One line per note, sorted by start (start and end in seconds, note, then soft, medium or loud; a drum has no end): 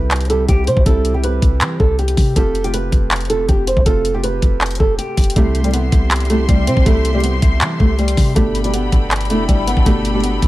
0.00 0.46 C2 loud
0.00 0.29 C3 medium
0.00 0.30 G3 medium
0.00 0.30 E4 medium
0.00 0.31 G4 medium
0.00 0.27 B4 medium
0.11 clap loud
0.11 closed hi-hat medium
0.16 closed hi-hat medium
0.21 closed hi-hat soft
0.25 closed hi-hat soft
0.29 0.66 C3 medium
0.29 0.66 G3 medium
0.29 0.67 E4 medium
0.29 0.67 G4 medium
0.29 0.46 A4 medium
0.29 closed hi-hat medium
0.48 0.69 C2 loud
0.48 0.64 G4 loud
0.48 kick loud
0.48 closed hi-hat medium
0.67 0.76 C3 loud
0.67 0.83 C5 medium
0.67 closed hi-hat medium
0.77 0.85 C2 loud
0.77 kick loud
0.85 1.40 C2 loud
0.85 1.04 C3 loud
0.85 1.04 G3 medium
0.85 1.04 E4 loud
0.85 1.13 A4 loud
0.85 1.05 A4 loud
0.85 kick loud
0.85 closed hi-hat medium
1.05 closed hi-hat medium
1.13 1.62 C3 medium
1.13 1.62 G3 medium
1.13 1.63 E4 medium
1.13 1.22 G4 medium
1.13 1.63 G4 medium
1.24 1.77 B4 medium
1.24 closed hi-hat medium
1.42 1.63 C2 loud
1.42 kick loud
1.42 closed hi-hat medium
1.61 1.79 E3 loud
1.61 clap loud
1.61 closed hi-hat medium
1.80 2.16 C2 loud
1.80 1.96 A4 medium
1.80 kick loud
1.99 2.34 G4 medium
1.99 closed hi-hat soft
2.08 closed hi-hat medium
2.17 2.35 C3 loud
2.17 kick loud
2.17 open hi-hat medium
2.36 2.90 F1 loud
2.36 2.54 C3 loud
2.36 2.54 A3 medium
2.36 2.55 F4 medium
2.36 2.55 G4 loud
2.36 2.63 A4 loud
2.36 kick loud
2.36 closed hi-hat medium
2.55 closed hi-hat medium
2.63 3.06 C3 medium
2.63 3.07 A3 medium
2.63 3.07 F4 medium
2.63 2.72 G4 medium
2.63 3.07 G4 medium
2.63 closed hi-hat medium
2.74 3.27 B4 medium
2.74 closed hi-hat medium
2.92 3.31 F1 loud
2.92 kick loud
2.92 closed hi-hat medium
3.11 clap loud
3.11 closed hi-hat medium
3.16 closed hi-hat medium
3.21 closed hi-hat soft
3.25 closed hi-hat soft
3.29 3.48 E1 loud
3.29 3.66 C3 medium
3.29 3.66 A3 medium
3.29 3.67 F4 medium
3.29 3.46 A4 medium
3.29 3.67 A4 medium
3.29 closed hi-hat medium
3.49 3.76 F1 loud
3.49 3.64 G4 medium
3.49 kick loud
3.49 closed hi-hat medium
3.67 3.83 C5 medium
3.67 closed hi-hat medium
3.77 3.85 F1 loud
3.77 kick loud
3.85 4.40 F1 loud
3.85 4.04 C3 loud
3.85 4.04 A3 medium
3.85 4.05 F4 loud
3.85 4.13 A4 loud
3.85 4.05 A4 loud
3.85 kick loud
3.85 closed hi-hat medium
4.05 closed hi-hat medium
4.13 4.62 C3 medium
4.13 4.62 A3 medium
4.13 4.63 F4 medium
4.13 4.22 G4 medium
4.13 4.63 G4 loud
4.24 4.77 B4 medium
4.24 closed hi-hat medium
4.42 4.78 F1 loud
4.42 kick loud
4.42 closed hi-hat medium
4.61 clap loud
4.61 closed hi-hat soft
4.66 closed hi-hat medium
4.71 closed hi-hat medium
4.75 closed hi-hat medium
4.80 4.98 F1 loud
4.80 4.96 A4 medium
4.80 kick loud
4.98 5.34 G4 medium
4.98 closed hi-hat medium
5.17 5.35 F1 loud
5.17 kick loud
5.17 closed hi-hat medium
5.17 open hi-hat medium
5.24 closed hi-hat medium
5.30 closed hi-hat medium
5.36 5.90 C2 loud
5.36 5.54 C3 loud
5.36 5.54 G3 medium
5.36 5.63 A3 medium
5.36 5.55 E4 medium
5.36 8.33 G4 medium
5.36 5.55 G4 loud
5.36 8.33 E5 medium
5.36 8.33 C6 medium
5.36 kick loud
5.36 closed hi-hat medium
5.55 closed hi-hat medium
5.63 6.06 C3 medium
5.63 6.06 G3 medium
5.63 5.72 G3 medium
5.63 6.07 E4 medium
5.63 6.07 A4 medium
5.63 closed hi-hat medium
5.74 6.27 B3 medium
5.74 closed hi-hat medium
5.92 6.46 C2 loud
5.92 kick loud
5.92 closed hi-hat medium
6.11 clap loud
6.11 closed hi-hat medium
6.16 closed hi-hat medium
6.20 closed hi-hat soft
6.25 closed hi-hat soft
6.30 6.66 C3 medium
6.30 6.66 G3 medium
6.30 6.46 A3 medium
6.30 6.67 E4 medium
6.30 6.67 G4 medium
6.30 closed hi-hat medium
6.48 6.69 C2 loud
6.48 6.64 G3 medium
6.48 kick loud
6.48 closed hi-hat medium
6.67 6.76 C3 loud
6.67 6.83 C4 medium
6.67 closed hi-hat medium
6.77 6.86 C2 loud
6.77 kick loud
6.85 7.40 C2 loud
6.85 7.04 C3 loud
6.85 7.04 G3 medium
6.85 7.12 A3 loud
6.85 7.04 E4 medium
6.85 7.04 A4 loud
6.85 kick loud
6.85 closed hi-hat medium
7.05 closed hi-hat medium
7.13 7.62 C3 medium
7.13 7.63 G3 medium
7.13 7.22 G3 medium
7.13 7.63 E4 medium
7.13 7.63 G4 medium
7.23 7.76 B3 medium
7.23 closed hi-hat medium
7.42 7.63 C2 loud
7.42 kick loud
7.42 closed hi-hat medium
7.61 7.79 E3 loud
7.61 clap loud
7.61 closed hi-hat medium
7.80 8.16 C2 loud
7.80 7.96 A3 medium
7.80 kick loud
7.99 8.34 G3 medium
7.99 closed hi-hat soft
8.08 closed hi-hat medium
8.17 8.35 C3 loud
8.17 kick loud
8.17 open hi-hat medium
8.35 8.90 G1 loud
8.35 8.54 B2 loud
8.35 8.54 A3 medium
8.35 8.62 A3 loud
8.35 8.54 D4 medium
8.35 8.54 G4 loud
8.35 10.48 A4 medium
8.35 10.48 G5 medium
8.35 10.48 B5 medium
8.35 kick loud
8.35 closed hi-hat medium
8.55 closed hi-hat medium
8.63 9.06 B2 medium
8.63 8.72 G3 medium
8.63 9.07 A3 medium
8.63 9.07 D4 medium
8.63 9.07 G4 medium
8.63 closed hi-hat medium
8.74 9.27 B3 medium
8.74 closed hi-hat medium
8.92 9.31 G1 loud
8.92 kick loud
8.92 closed hi-hat medium
9.11 clap loud
9.11 closed hi-hat medium
9.16 closed hi-hat medium
9.21 closed hi-hat soft
9.25 closed hi-hat soft
9.29 9.48 F1 loud
9.29 9.66 B2 medium
9.29 9.66 A3 medium
9.29 9.46 A3 medium
9.29 9.67 D4 medium
9.29 9.67 E4 medium
9.29 closed hi-hat medium
9.48 9.76 G1 loud
9.48 9.64 G3 medium
9.48 kick loud
9.48 closed hi-hat medium
9.67 9.83 B3 medium
9.67 closed hi-hat medium
9.77 9.86 G1 loud
9.77 kick loud
9.85 10.40 G1 loud
9.85 10.04 B2 loud
9.85 10.04 A3 medium
9.85 10.13 A3 loud
9.85 10.04 D4 medium
9.85 10.05 G4 loud
9.85 kick loud
9.85 closed hi-hat medium
10.05 closed hi-hat medium
10.13 10.48 B2 medium
10.13 10.22 G3 medium
10.13 10.48 A3 medium
10.13 10.48 D4 medium
10.13 10.48 G4 medium
10.23 10.48 B3 medium
10.23 closed hi-hat medium
10.42 10.48 G1 loud
10.42 kick loud
10.42 closed hi-hat medium